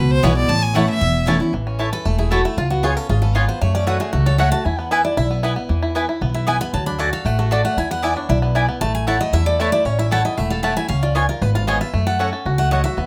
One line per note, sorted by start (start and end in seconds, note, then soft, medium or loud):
0.00 0.19 C#2 loud
0.00 0.47 B2 loud
0.00 0.13 B4 medium
0.11 0.25 C5 loud
0.23 0.45 B1 loud
0.23 0.48 E3 loud
0.23 0.48 G#3 medium
0.23 0.32 B3 loud
0.23 0.29 B3 medium
0.23 0.49 B3 loud
0.23 0.32 E4 loud
0.23 0.30 E4 medium
0.23 0.49 E4 medium
0.23 0.33 B4 loud
0.23 0.36 C#5 loud
0.23 0.33 G#5 loud
0.36 0.50 D5 medium
0.49 0.86 A1 medium
0.49 0.99 A2 loud
0.49 0.64 A5 loud
0.62 0.77 G#5 loud
0.74 1.00 E3 medium
0.74 0.84 A3 medium
0.74 1.00 A3 medium
0.74 0.82 A3 medium
0.74 1.00 C#4 medium
0.74 0.82 C#4 medium
0.74 0.84 E4 medium
0.74 0.82 E4 medium
0.74 1.01 E4 medium
0.74 0.85 C#5 loud
0.74 0.88 F#5 medium
0.74 0.85 A5 loud
0.89 1.25 E5 loud
1.01 1.38 E1 medium
1.01 1.51 E2 medium
1.26 1.39 E3 medium
1.26 1.40 A3 loud
1.26 1.36 A3 medium
1.26 1.34 A3 medium
1.26 1.40 C#4 medium
1.26 1.34 C#4 medium
1.26 1.36 E4 loud
1.26 1.39 E4 medium
1.26 1.34 E4 medium
1.26 1.37 C#5 loud
1.26 1.37 A5 loud
1.40 1.54 C#4 medium
1.40 1.52 E4 medium
1.53 1.90 A1 medium
1.53 1.90 E3 medium
1.67 2.74 C#4 medium
1.79 1.88 A3 medium
1.79 1.88 E4 medium
1.79 2.16 E4 medium
1.79 1.89 C#5 medium
1.79 1.89 A5 medium
1.93 2.29 A4 medium
1.93 2.05 B4 loud
2.05 2.42 E1 medium
2.05 2.42 A3 medium
2.05 2.18 A4 medium
2.18 2.55 E4 medium
2.18 2.31 G#4 medium
2.31 2.40 A3 medium
2.31 2.40 E4 loud
2.31 2.44 F#4 medium
2.31 2.58 A4 medium
2.31 2.41 C#5 loud
2.31 2.41 A5 loud
2.45 2.58 A3 medium
2.45 2.57 E4 medium
2.57 2.94 C#2 medium
2.57 2.70 F4 medium
2.57 2.82 F4 medium
2.70 3.07 B3 medium
2.70 2.83 F#4 medium
2.83 2.92 B3 medium
2.83 3.09 F4 medium
2.83 2.93 F4 loud
2.83 2.97 G#4 medium
2.83 2.93 C#5 loud
2.83 2.93 G#5 loud
2.97 3.33 C#4 medium
2.97 3.09 A4 loud
3.09 3.46 G#1 medium
3.09 3.34 F4 medium
3.09 3.21 G#4 medium
3.22 3.47 B3 medium
3.22 3.35 A4 medium
3.35 3.44 B3 medium
3.35 3.44 F4 loud
3.35 3.61 F4 medium
3.35 3.48 B4 medium
3.35 3.45 C#5 loud
3.35 3.45 G#5 loud
3.48 3.61 B3 medium
3.48 3.61 C5 medium
3.61 3.98 F#2 medium
3.61 3.98 A3 medium
3.61 3.74 C#5 medium
3.75 4.11 C#4 medium
3.75 3.87 D5 medium
3.87 3.96 A3 medium
3.87 3.96 F#4 loud
3.87 4.12 F#4 medium
3.87 4.00 B4 medium
3.87 3.96 C#5 loud
3.87 3.97 F#5 loud
4.00 4.37 A3 medium
4.00 4.12 G#4 medium
4.13 4.50 C#2 medium
4.13 4.50 F#4 medium
4.13 4.26 A4 medium
4.26 4.63 A4 medium
4.26 4.38 C#5 medium
4.38 4.48 A3 medium
4.38 4.65 A3 medium
4.38 4.48 F#4 loud
4.38 4.48 C#5 loud
4.38 4.51 F#5 medium
4.38 4.49 F#5 loud
4.52 4.65 F#4 medium
4.52 4.65 A5 loud
4.65 5.02 E2 medium
4.65 4.90 E4 medium
4.65 4.79 G#5 loud
4.79 5.15 B3 medium
4.79 4.91 F#5 medium
4.91 5.00 B3 medium
4.91 5.04 E4 medium
4.91 5.01 E4 loud
4.91 5.01 B4 loud
4.91 5.04 E5 medium
4.91 5.01 G#5 loud
5.05 5.16 E4 medium
5.05 5.17 D5 loud
5.17 5.54 B1 medium
5.17 5.42 E4 medium
5.17 5.54 E5 medium
5.31 5.55 B3 medium
5.43 5.52 B3 loud
5.43 5.80 E4 medium
5.43 5.53 E4 medium
5.43 5.53 B4 loud
5.43 5.53 G#5 loud
5.56 5.93 B3 medium
5.69 6.06 E2 medium
5.69 6.06 E3 medium
5.83 5.95 E4 medium
5.95 6.04 B3 medium
5.95 6.05 E4 loud
5.95 6.08 E4 medium
5.95 6.05 B4 loud
5.95 6.05 G#5 loud
6.09 6.34 E4 medium
6.21 6.58 B1 medium
6.21 6.58 B3 medium
6.34 6.47 E4 medium
6.34 6.47 E5 medium
6.47 6.56 B3 loud
6.47 6.56 E4 loud
6.47 6.74 E4 medium
6.47 6.57 B4 loud
6.47 6.60 G#5 medium
6.47 6.57 G#5 loud
6.61 6.74 B3 medium
6.61 6.73 B5 loud
6.73 7.10 D2 medium
6.73 7.10 F#3 medium
6.73 6.86 A5 loud
6.86 7.23 D4 medium
6.86 6.99 B5 loud
6.99 7.08 A3 medium
6.99 7.36 F#4 medium
6.99 7.09 F#4 loud
6.99 7.09 D5 loud
6.99 7.12 G#5 loud
6.99 7.09 A5 loud
7.13 7.49 A4 medium
7.13 7.26 F5 medium
7.25 7.62 A1 medium
7.25 7.62 A3 medium
7.25 7.38 F#5 loud
7.39 7.75 F#4 medium
7.39 7.51 A4 medium
7.51 7.60 A3 loud
7.51 7.61 F#4 loud
7.51 7.78 A4 medium
7.51 7.65 D5 medium
7.51 7.61 D5 loud
7.51 7.61 A5 loud
7.65 7.77 A3 medium
7.65 7.78 F#5 loud
7.77 8.14 E2 medium
7.77 8.03 E4 medium
7.77 7.91 G#5 loud
7.91 8.27 B3 medium
7.91 8.04 F#5 loud
8.02 8.12 B3 medium
8.02 8.12 E4 loud
8.02 8.29 E4 medium
8.02 8.12 D5 loud
8.02 8.17 E5 medium
8.02 8.13 G#5 loud
8.17 8.53 D4 medium
8.17 8.29 C#5 medium
8.29 8.66 B1 loud
8.29 8.55 E4 medium
8.29 8.37 D5 medium
8.42 8.67 B3 medium
8.55 8.64 B3 medium
8.55 9.07 E4 medium
8.55 8.64 E4 loud
8.55 8.65 D5 loud
8.55 8.65 G#5 loud
8.69 8.81 B3 medium
8.81 9.18 A1 medium
8.81 9.18 A3 medium
8.81 8.94 A5 loud
8.95 9.07 G#5 loud
9.07 9.16 A3 medium
9.07 9.16 E4 loud
9.07 9.32 E4 medium
9.07 9.17 C#5 loud
9.07 9.20 F#5 medium
9.07 9.17 A5 medium
9.21 9.57 A3 medium
9.21 9.33 D#5 loud
9.33 9.69 E2 loud
9.33 9.70 E4 medium
9.33 9.46 E5 loud
9.46 9.83 A4 medium
9.46 9.60 D5 loud
9.60 9.85 A3 medium
9.60 9.69 A3 medium
9.60 9.69 E4 loud
9.60 9.72 B4 medium
9.60 9.69 C#5 loud
9.60 9.69 A5 loud
9.72 9.86 E4 medium
9.72 9.85 D5 loud
9.85 10.22 A1 medium
9.85 10.89 C#4 medium
9.85 9.98 C#5 medium
9.99 10.24 E4 medium
9.99 10.11 E5 loud
10.11 10.20 A3 medium
10.11 10.21 E4 medium
10.11 10.48 A4 medium
10.11 10.21 C#5 loud
10.11 10.24 F#5 loud
10.11 10.21 A5 loud
10.25 10.61 E4 medium
10.25 10.37 D#5 medium
10.37 10.74 E1 medium
10.37 10.63 A3 medium
10.37 10.50 E5 loud
10.50 10.87 A4 medium
10.50 10.63 F5 loud
10.63 10.72 A3 medium
10.63 10.90 A3 medium
10.63 10.72 E4 medium
10.63 10.73 C#5 loud
10.63 10.76 F#5 loud
10.63 10.73 A5 loud
10.77 10.90 E4 medium
10.77 10.88 G#5 loud
10.88 11.26 C#2 medium
10.88 11.26 C#4 medium
10.88 11.02 F5 loud
11.03 11.15 F4 medium
11.03 11.15 D5 medium
11.15 11.24 B3 medium
11.15 11.24 F4 medium
11.15 11.28 F4 medium
11.15 11.28 C#5 medium
11.15 11.25 C#5 loud
11.15 11.25 G#5 loud
11.29 11.54 F4 medium
11.29 11.42 A#4 medium
11.41 11.78 G#1 medium
11.41 11.66 B3 medium
11.41 11.50 B4 loud
11.55 11.80 F4 medium
11.55 11.67 F5 medium
11.67 11.76 B3 medium
11.67 11.93 B3 medium
11.67 11.77 F4 loud
11.67 11.77 C#5 loud
11.67 11.80 D#5 medium
11.67 11.77 G#5 loud
11.81 11.94 F4 medium
11.81 12.05 E5 medium
11.93 12.30 F#2 medium
11.93 12.30 A3 medium
12.07 12.31 A4 medium
12.07 12.31 F#5 medium
12.19 12.29 A3 medium
12.19 12.56 C#4 medium
12.19 12.29 F#4 medium
12.19 12.29 C#5 medium
12.19 12.29 F#5 loud
12.33 12.69 A4 medium
12.45 12.82 C#2 medium
12.45 12.82 F#4 medium
12.58 12.95 A3 medium
12.58 12.71 F#5 loud
12.71 12.98 F#3 medium
12.71 12.80 A3 loud
12.71 12.81 F#4 medium
12.71 12.81 C#5 medium
12.71 12.83 D#5 medium
12.71 12.81 F#5 loud
12.84 12.98 F#4 medium
12.84 13.06 E5 loud
12.97 13.06 E2 medium
12.97 13.06 B3 medium